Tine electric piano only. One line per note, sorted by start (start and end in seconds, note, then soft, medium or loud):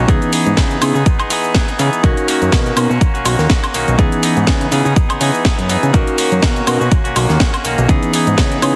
0.07 0.79 E3 medium
0.07 0.79 B3 medium
0.07 0.79 C#4 medium
0.07 0.79 D#4 medium
0.07 0.79 G#4 loud
0.81 0.94 B3 medium
0.81 0.94 C#4 medium
0.81 0.94 D#4 medium
0.81 0.94 E4 medium
0.81 0.94 G#4 medium
2.03 2.74 C#4 medium
2.03 2.74 D#4 medium
2.03 2.74 F#4 medium
2.03 2.75 A#4 loud
2.76 2.89 B3 medium
2.76 2.89 C#4 medium
2.76 2.89 D#4 medium
2.76 2.89 F#4 medium
2.76 2.89 A#4 medium
3.98 4.69 E3 medium
3.98 4.69 B3 medium
3.98 4.69 C#4 medium
3.98 4.69 D#4 medium
3.98 4.70 G#4 loud
4.71 4.84 B3 medium
4.71 4.84 C#4 medium
4.71 4.84 D#4 medium
4.71 4.84 E4 medium
4.71 4.85 G#4 medium
5.93 6.64 C#4 medium
5.93 6.64 D#4 medium
5.93 6.65 F#4 medium
5.93 6.65 A#4 loud
6.67 6.79 B3 medium
6.67 6.80 C#4 medium
6.67 6.80 D#4 medium
6.67 6.80 F#4 medium
6.67 6.80 A#4 medium
7.88 8.60 E3 medium
7.88 8.59 B3 medium
7.88 8.59 C#4 medium
7.88 8.60 D#4 medium
7.88 8.60 G#4 loud
8.62 8.74 B3 medium
8.62 8.75 C#4 medium
8.62 8.75 D#4 medium
8.62 8.75 E4 medium
8.62 8.75 G#4 medium